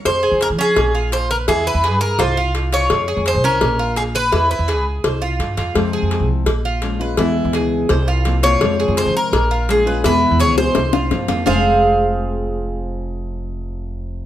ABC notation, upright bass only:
X:1
M:4/4
L:1/16
Q:1/4=168
K:Fm
V:1 name="Upright bass" clef=bass
F,,3 F,,2 F,3 B,,,8 | =E,,3 E,,2 G,,3 C,,8 | F,,3 F,,2 C,,3 B,,,8 | =E,,3 E,,2 D,,3 C,,4 G,,2 F,,2 |
F,,3 F,,2 C,,3 B,,,8 | =E,,3 E,,2 D,,3 C,,8 | F,,3 F,,2 F,3 B,,,8 | =E,,3 E,,2 D,,3 C,,4 G,,2 F,,2 |
F,,,16- | F,,,16 |]